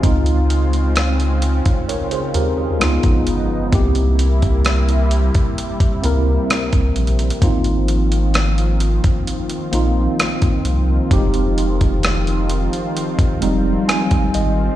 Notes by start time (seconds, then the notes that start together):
Already playing: G#3 F4
0.02 C#2 C#3 G#3 C4 D#4 F4, kick, closed hi-hat
0.26 closed hi-hat
0.50 closed hi-hat
0.73 closed hi-hat
0.96 cross-stick, closed hi-hat
1.20 closed hi-hat
1.42 closed hi-hat
1.66 kick, closed hi-hat
1.89 A#4 C#5, closed hi-hat
2.11 G#4 C5, closed hi-hat
2.34 D#2 G4 A#4, closed hi-hat
2.58 F4 G#4
2.79 C#2 F3 G#3 B3 D#4 F4, cross-stick, closed hi-hat
3.03 A#1, kick, closed hi-hat
3.26 G1, closed hi-hat
3.72 C2 C3 G3 A#3 C4 E4 G4, kick, closed hi-hat
3.95 closed hi-hat
4.19 closed hi-hat
4.42 kick, closed hi-hat
4.65 cross-stick, closed hi-hat
4.89 closed hi-hat
5.11 closed hi-hat
5.35 kick, closed hi-hat
5.57 C4, closed hi-hat
5.80 kick, closed hi-hat
6.02 C#2 A#3 C4 E4 A#4, closed hi-hat
6.50 cross-stick, closed hi-hat
6.73 C2, kick, closed hi-hat
6.96 A#1, closed hi-hat
7.07 closed hi-hat
7.19 closed hi-hat
7.30 closed hi-hat
7.41 G#1 D#3 F3 A#3 C4 D#4 F4, kick, closed hi-hat
7.64 closed hi-hat
7.88 closed hi-hat
8.12 closed hi-hat
8.34 cross-stick, closed hi-hat
8.58 closed hi-hat
8.80 closed hi-hat
9.04 kick, closed hi-hat
9.27 closed hi-hat
9.49 closed hi-hat
9.72 A#1 A#3 C4 D#4 F4, closed hi-hat
10.20 cross-stick, closed hi-hat
10.42 G#1, kick, closed hi-hat
10.65 C2, closed hi-hat
11.10 F1 G3 C4 D#4 G4, kick, closed hi-hat
11.17 G#3
11.34 closed hi-hat
11.58 closed hi-hat
11.81 kick, closed hi-hat
12.03 cross-stick, closed hi-hat
12.27 closed hi-hat
12.50 closed hi-hat
12.73 closed hi-hat
12.97 closed hi-hat
13.19 kick, closed hi-hat
13.41 F1 G3 G#3 C4 D#4, closed hi-hat
13.88 G#5, cross-stick, closed hi-hat
14.11 G1, kick, closed hi-hat
14.34 G#1 D#5, closed hi-hat